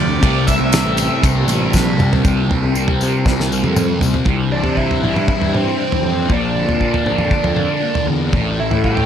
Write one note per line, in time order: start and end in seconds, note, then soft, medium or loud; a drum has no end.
0.00 0.38 C2 medium
0.00 0.20 F2 medium
0.00 0.99 G2 medium
0.00 0.19 C3 medium
0.00 1.63 C3 medium
0.00 0.22 F3 loud
0.00 0.24 A3 medium
0.00 1.20 A3 medium
0.00 2.21 C4 medium
0.00 0.21 F4 medium
0.00 2.21 G4 medium
0.00 0.43 D5 medium
0.09 0.21 D2 medium
0.21 0.57 C2 loud
0.21 1.21 C3 medium
0.21 1.22 G3 medium
0.21 kick loud
0.21 ride loud
0.25 1.23 C4 medium
0.25 1.24 E4 medium
0.39 7.54 C2 medium
0.47 1.19 E5 medium
0.47 kick medium
0.47 ride medium
0.47 tambourine medium
0.60 0.84 C2 loud
0.72 snare loud
0.72 ride loud
0.72 tambourine loud
0.84 1.08 A1 medium
0.97 8.14 G2 medium
0.97 ride medium
0.97 tambourine medium
1.21 1.46 C2 medium
1.21 2.22 C3 medium
1.21 2.23 G3 loud
1.21 2.22 A#3 medium
1.21 2.22 F4 medium
1.21 kick loud
1.21 ride loud
1.21 tambourine medium
1.26 2.24 C4 loud
1.47 1.70 A1 medium
1.47 ride medium
1.47 tambourine medium
1.63 8.78 C3 medium
1.73 1.96 A#1 medium
1.73 kick medium
1.73 snare medium
1.73 tambourine medium
1.98 2.21 C2 medium
1.98 mid tom medium
1.98 tambourine soft
2.13 floor tom loud
2.23 2.60 C2 medium
2.23 2.72 C3 medium
2.23 2.50 G3 medium
2.23 4.25 A#3 medium
2.23 4.25 C4 medium
2.23 2.48 C4 medium
2.23 4.25 F4 medium
2.23 4.24 G4 medium
2.23 kick loud
2.23 floor tom medium
2.23 tambourine medium
2.49 2.74 G3 medium
2.49 2.76 C4 medium
2.49 floor tom medium
2.63 2.98 C2 medium
2.73 3.24 C3 medium
2.73 3.26 G3 medium
2.73 3.27 C4 medium
2.73 tambourine medium
2.88 floor tom medium
3.01 3.25 C3 medium
3.01 tambourine medium
3.25 3.61 C2 medium
3.25 3.74 C3 medium
3.25 3.53 G3 medium
3.25 3.49 C4 medium
3.25 kick loud
3.25 snare medium
3.25 tambourine soft
3.40 snare soft
3.50 3.75 G3 medium
3.50 3.77 C4 medium
3.50 tambourine medium
3.63 3.99 F2 medium
3.63 high tom medium
3.75 4.25 C3 medium
3.75 4.03 G3 medium
3.75 4.00 C4 medium
3.75 mid tom medium
3.75 tambourine medium
3.99 4.12 C2 medium
3.99 4.25 C4 medium
3.99 floor tom medium
3.99 tambourine medium
4.04 4.27 G3 medium
4.14 floor tom medium
4.24 4.62 C2 medium
4.24 5.54 C3 medium
4.24 8.28 D4 medium
4.24 6.27 E4 medium
4.24 6.27 G4 medium
4.24 6.27 C5 medium
4.24 kick medium
4.24 floor tom medium
4.51 5.53 E3 medium
4.51 4.78 D4 medium
4.63 5.03 C3 medium
4.63 floor tom medium
4.77 5.78 G3 medium
4.77 5.27 E4 medium
4.77 kick soft
4.91 floor tom medium
5.02 5.13 C2 medium
5.02 6.30 E4 medium
5.02 mid tom medium
5.14 5.27 G2 medium
5.14 mid tom medium
5.28 6.30 D4 medium
5.28 5.54 E4 medium
5.28 kick loud
5.40 5.64 G2 medium
5.40 floor tom medium
5.53 6.02 E3 medium
5.53 6.04 C4 medium
5.53 mid tom medium
5.79 6.30 G3 medium
5.92 floor tom medium
6.02 6.31 F2 medium
6.02 6.29 E3 medium
6.02 6.31 C4 medium
6.28 6.65 A#1 medium
6.28 7.56 A#2 medium
6.28 8.31 F4 medium
6.28 8.31 A#4 medium
6.28 8.31 D5 medium
6.28 kick medium
6.28 floor tom medium
6.32 8.05 D4 medium
6.55 7.55 D3 medium
6.65 7.07 A#2 medium
6.65 floor tom medium
6.79 7.80 A#3 medium
6.79 kick medium
6.94 floor tom medium
7.06 7.18 A#1 medium
7.06 8.33 F4 medium
7.06 mid tom medium
7.18 7.31 F2 medium
7.18 mid tom medium
7.30 8.33 D4 medium
7.30 kick medium
7.44 7.68 F2 medium
7.44 floor tom medium
7.56 8.08 D3 medium
7.56 mid tom medium
7.82 8.33 A#3 medium
7.95 floor tom medium
8.07 8.34 E2 medium
8.07 8.34 D3 medium
8.32 8.69 A1 medium
8.32 9.06 A2 medium
8.32 9.06 G4 medium
8.32 9.06 A4 medium
8.32 9.06 C5 medium
8.32 9.06 E5 medium
8.32 kick medium
8.32 floor tom medium
8.60 9.06 E3 medium
8.60 8.84 E4 medium
8.71 9.06 A2 medium
8.71 floor tom medium
8.84 9.06 G3 medium
8.84 9.06 G4 medium
8.84 kick medium
8.97 floor tom medium